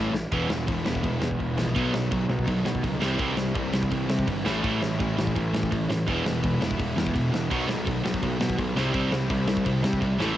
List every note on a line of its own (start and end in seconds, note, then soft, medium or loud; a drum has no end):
0.00 0.12 A2 loud
0.00 0.14 A2 medium
0.00 0.12 E3 loud
0.00 0.13 E3 loud
0.00 0.14 E3 medium
0.00 0.12 A3 loud
0.00 0.13 A3 loud
0.00 0.13 A3 medium
0.00 0.13 C#4 medium
0.00 0.13 E4 medium
0.13 0.24 A1 loud
0.13 snare loud
0.32 0.48 E1 medium
0.32 0.49 E2 medium
0.32 0.49 B2 loud
0.32 0.85 E3 medium
0.32 0.49 E3 medium
0.32 0.85 G#3 medium
0.32 0.86 B3 medium
0.32 0.85 E4 medium
0.32 kick loud
0.32 crash medium
0.49 0.66 E1 medium
0.49 0.66 E2 medium
0.49 0.66 B2 medium
0.49 snare loud
0.68 0.85 E1 medium
0.68 0.84 E2 medium
0.68 0.84 B2 medium
0.68 kick loud
0.68 crash medium
0.85 1.02 E1 medium
0.85 1.02 E2 medium
0.85 1.02 B2 medium
0.85 1.75 E3 medium
0.85 1.75 G#3 medium
0.85 1.75 B3 medium
0.85 1.75 E4 medium
0.85 snare loud
0.95 kick medium
1.03 1.21 E1 loud
1.03 1.20 E2 medium
1.03 1.20 B2 medium
1.03 kick loud
1.03 crash medium
1.22 1.38 E2 medium
1.22 1.39 E2 medium
1.22 1.38 B2 medium
1.22 snare loud
1.31 kick medium
1.39 1.56 E1 medium
1.39 1.56 E2 medium
1.39 1.56 B2 medium
1.39 kick medium
1.39 crash medium
1.57 1.74 A#1 medium
1.57 1.74 E2 medium
1.57 1.74 B2 medium
1.57 snare loud
1.75 1.93 B1 medium
1.75 2.28 B2 medium
1.75 1.92 B2 medium
1.75 2.28 D#3 medium
1.75 2.29 F#3 loud
1.75 1.92 F#3 medium
1.75 1.93 B3 loud
1.75 2.28 B3 medium
1.75 2.27 D#4 loud
1.75 kick loud
1.75 crash medium
1.93 2.10 B1 medium
1.93 2.10 B2 medium
1.93 2.10 F#3 medium
1.93 snare loud
2.11 2.28 B1 medium
2.11 2.28 B2 medium
2.11 2.28 F#3 medium
2.11 kick loud
2.11 crash medium
2.28 2.46 B1 medium
2.28 2.46 B2 medium
2.28 3.00 B2 medium
2.28 3.01 D#3 medium
2.28 3.01 F#3 medium
2.28 2.46 F#3 medium
2.28 3.00 B3 medium
2.28 3.00 D#4 medium
2.28 snare loud
2.39 kick medium
2.47 2.64 B1 loud
2.47 2.63 B2 medium
2.47 2.63 F#3 medium
2.47 kick loud
2.47 crash medium
2.65 2.81 B2 medium
2.65 2.82 B2 medium
2.65 2.82 F#3 medium
2.65 snare loud
2.75 kick medium
2.82 3.00 C#2 medium
2.82 2.99 B2 medium
2.82 2.99 F#3 medium
2.82 kick loud
2.82 crash medium
3.00 3.19 C2 medium
3.00 3.54 C3 medium
3.00 3.17 C3 medium
3.00 3.56 E3 medium
3.00 3.18 G3 loud
3.00 3.54 G3 medium
3.00 3.18 C4 loud
3.00 3.55 C4 loud
3.00 3.57 E4 medium
3.00 snare loud
3.18 3.36 C2 medium
3.18 3.35 C3 medium
3.18 3.35 G3 loud
3.18 3.36 C4 medium
3.18 kick loud
3.18 crash medium
3.36 3.54 C2 medium
3.36 3.53 C3 medium
3.36 3.53 G3 medium
3.36 snare loud
3.54 3.72 C2 medium
3.54 3.71 C3 medium
3.54 4.44 C3 medium
3.54 4.45 E3 medium
3.54 3.71 G3 medium
3.54 4.45 G3 medium
3.54 4.45 C4 medium
3.54 4.47 E4 medium
3.54 kick loud
3.54 crash medium
3.72 3.90 C2 medium
3.72 3.89 C3 medium
3.72 3.89 G3 medium
3.72 snare loud
3.83 kick medium
3.90 4.08 C2 medium
3.90 4.07 C3 medium
3.90 4.07 G3 medium
3.90 kick loud
3.90 crash medium
4.09 4.25 C3 medium
4.09 4.26 C3 medium
4.09 4.25 G3 medium
4.09 snare loud
4.19 kick medium
4.27 4.44 G1 medium
4.27 4.43 C3 medium
4.27 4.43 G3 medium
4.27 kick medium
4.27 crash medium
4.45 4.62 A1 loud
4.45 4.98 A2 loud
4.45 4.62 A2 medium
4.45 4.62 E3 medium
4.45 5.00 E3 loud
4.45 4.63 A3 loud
4.45 4.99 A3 loud
4.45 4.99 C#4 loud
4.45 5.01 E4 loud
4.45 snare loud
4.64 4.80 A1 medium
4.64 4.80 A2 loud
4.64 4.81 E3 loud
4.64 4.81 A3 loud
4.64 kick loud
4.64 crash medium
4.82 4.98 A1 medium
4.82 4.98 A2 medium
4.82 4.98 E3 medium
4.82 snare loud
4.99 5.16 A1 medium
4.99 5.88 A2 medium
4.99 5.15 A2 medium
4.99 5.16 E3 medium
4.99 5.88 E3 medium
4.99 5.89 A3 medium
4.99 5.89 C#4 medium
4.99 5.89 E4 medium
4.99 kick loud
4.99 crash medium
5.18 5.34 A1 medium
5.18 5.34 A2 medium
5.18 5.34 E3 medium
5.18 snare loud
5.27 kick medium
5.35 5.52 A1 medium
5.35 5.51 A2 medium
5.35 5.51 E3 medium
5.35 kick loud
5.35 crash medium
5.53 5.70 A2 medium
5.53 5.69 A2 medium
5.53 5.69 E3 loud
5.53 snare loud
5.63 kick medium
5.72 5.88 A1 medium
5.72 5.88 A2 medium
5.72 5.88 E3 medium
5.72 kick loud
5.72 crash medium
5.89 6.06 A1 medium
5.89 6.05 A2 medium
5.89 6.06 E3 medium
5.89 snare loud
6.07 6.24 E1 medium
6.07 6.23 E2 loud
6.07 6.24 B2 loud
6.07 6.60 E3 loud
6.07 6.24 E3 loud
6.07 6.60 G#3 medium
6.07 6.61 B3 medium
6.07 6.59 E4 medium
6.07 kick loud
6.07 crash medium
6.24 6.41 E1 medium
6.24 6.41 E2 medium
6.24 6.41 B2 medium
6.24 snare loud
6.43 6.60 E1 medium
6.43 6.59 E2 medium
6.43 6.59 B2 medium
6.43 kick loud
6.43 crash medium
6.60 6.78 E1 medium
6.60 6.77 E2 medium
6.60 6.77 B2 medium
6.60 7.50 E3 medium
6.60 7.50 G#3 medium
6.60 7.50 B3 medium
6.60 7.49 E4 medium
6.60 snare loud
6.71 kick medium
6.79 6.95 E1 medium
6.79 6.95 E2 medium
6.79 6.95 B2 loud
6.79 kick loud
6.79 crash medium
6.96 7.13 E2 medium
6.96 7.13 B2 medium
6.96 snare loud
7.07 kick medium
7.14 7.32 E1 medium
7.14 7.31 E2 medium
7.14 7.31 B2 medium
7.14 kick medium
7.14 crash medium
7.32 7.49 E1 loud
7.32 7.49 E2 medium
7.32 7.49 B2 medium
7.32 snare loud
7.50 7.67 B1 medium
7.50 8.03 B2 loud
7.50 7.67 B2 medium
7.50 8.04 D#3 medium
7.50 7.67 F#3 loud
7.50 8.03 F#3 loud
7.50 7.68 B3 loud
7.50 8.03 B3 loud
7.50 8.02 D#4 medium
7.50 kick loud
7.50 crash medium
7.68 7.85 B1 medium
7.68 7.85 B2 medium
7.68 7.85 F#3 medium
7.68 snare loud
7.86 8.04 B1 medium
7.86 8.02 B2 medium
7.86 8.03 F#3 medium
7.86 kick loud
7.86 crash medium
8.03 8.21 B1 medium
8.03 8.21 B2 medium
8.03 8.76 B2 medium
8.03 8.75 D#3 medium
8.03 8.75 F#3 medium
8.03 8.21 F#3 medium
8.03 8.75 B3 medium
8.03 8.75 D#4 medium
8.03 snare loud
8.14 kick loud
8.23 8.39 B1 loud
8.23 8.39 B2 medium
8.23 8.39 F#3 medium
8.23 kick loud
8.23 crash medium
8.40 8.57 B2 medium
8.40 8.56 B2 medium
8.40 8.56 F#3 medium
8.40 snare loud
8.50 kick medium
8.58 8.75 B1 loud
8.58 8.75 B2 medium
8.58 8.75 F#3 medium
8.58 kick loud
8.58 crash medium
8.75 8.93 C2 loud
8.75 9.28 C3 loud
8.75 8.93 C3 loud
8.75 9.28 G3 loud
8.75 8.93 G3 medium
8.75 8.93 C4 loud
8.75 9.30 C4 loud
8.75 9.31 E4 loud
8.75 snare loud
8.94 9.11 C2 medium
8.94 9.10 C3 loud
8.94 9.11 G3 loud
8.94 9.12 C4 loud
8.94 kick loud
8.94 crash medium
9.11 9.29 C2 medium
9.11 9.28 C3 medium
9.11 9.28 G3 medium
9.11 snare loud
9.29 9.47 C2 medium
9.29 10.18 C3 medium
9.29 9.46 C3 medium
9.29 10.19 G3 medium
9.29 9.47 G3 medium
9.29 10.19 C4 medium
9.29 10.20 E4 medium
9.29 kick loud
9.29 crash medium
9.48 9.65 C2 medium
9.48 9.64 C3 medium
9.48 9.65 G3 medium
9.48 snare loud
9.57 kick medium
9.66 9.83 C2 loud
9.66 9.82 C3 medium
9.66 9.83 G3 medium
9.66 kick loud
9.66 crash medium
9.84 10.01 C3 loud
9.84 10.00 C3 medium
9.84 10.00 G3 medium
9.84 snare loud
9.93 kick medium
10.02 10.19 C2 medium
10.02 10.18 C3 medium
10.02 10.18 G3 medium
10.02 kick medium
10.02 crash medium
10.19 10.37 A1 loud
10.19 10.37 A2 loud
10.19 10.36 A2 medium
10.19 10.37 E3 loud
10.19 10.36 E3 loud
10.19 10.37 A3 loud
10.19 10.37 C#4 loud
10.19 10.37 E4 loud
10.19 snare loud